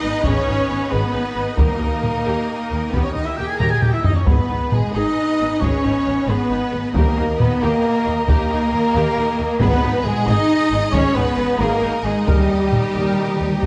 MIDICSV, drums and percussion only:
0, 0, Header, 1, 2, 480
1, 0, Start_track
1, 0, Key_signature, 5, "minor"
1, 0, Tempo, 445765
1, 1702, Time_signature, 12, 3, 24, 8
1, 14711, End_track
2, 0, Start_track
2, 0, Title_t, "Taiko and cinematic ensemble drums"
2, 260, Note_on_c, 9, 41, 91
2, 367, Note_off_c, 9, 41, 0
2, 1695, Note_on_c, 9, 41, 105
2, 1803, Note_off_c, 9, 41, 0
2, 2188, Note_on_c, 9, 45, 69
2, 2296, Note_off_c, 9, 45, 0
2, 3153, Note_on_c, 9, 41, 90
2, 3260, Note_off_c, 9, 41, 0
2, 3877, Note_on_c, 9, 45, 95
2, 3985, Note_off_c, 9, 45, 0
2, 4117, Note_on_c, 9, 45, 96
2, 4225, Note_off_c, 9, 45, 0
2, 4356, Note_on_c, 9, 43, 103
2, 4464, Note_off_c, 9, 43, 0
2, 4592, Note_on_c, 9, 41, 108
2, 4700, Note_off_c, 9, 41, 0
2, 5082, Note_on_c, 9, 45, 71
2, 5190, Note_off_c, 9, 45, 0
2, 6041, Note_on_c, 9, 41, 95
2, 6149, Note_off_c, 9, 41, 0
2, 6284, Note_on_c, 9, 37, 48
2, 6392, Note_off_c, 9, 37, 0
2, 7478, Note_on_c, 9, 41, 109
2, 7586, Note_off_c, 9, 41, 0
2, 7724, Note_on_c, 9, 37, 48
2, 7832, Note_off_c, 9, 37, 0
2, 7966, Note_on_c, 9, 45, 74
2, 8074, Note_off_c, 9, 45, 0
2, 8689, Note_on_c, 9, 37, 44
2, 8797, Note_off_c, 9, 37, 0
2, 8921, Note_on_c, 9, 41, 92
2, 9029, Note_off_c, 9, 41, 0
2, 9159, Note_on_c, 9, 37, 51
2, 9267, Note_off_c, 9, 37, 0
2, 10340, Note_on_c, 9, 41, 108
2, 10447, Note_off_c, 9, 41, 0
2, 10826, Note_on_c, 9, 45, 81
2, 10933, Note_off_c, 9, 45, 0
2, 11066, Note_on_c, 9, 37, 47
2, 11173, Note_off_c, 9, 37, 0
2, 11775, Note_on_c, 9, 41, 102
2, 11883, Note_off_c, 9, 41, 0
2, 12984, Note_on_c, 9, 37, 48
2, 13092, Note_off_c, 9, 37, 0
2, 13217, Note_on_c, 9, 41, 114
2, 13325, Note_off_c, 9, 41, 0
2, 13702, Note_on_c, 9, 45, 71
2, 13810, Note_off_c, 9, 45, 0
2, 14711, End_track
0, 0, End_of_file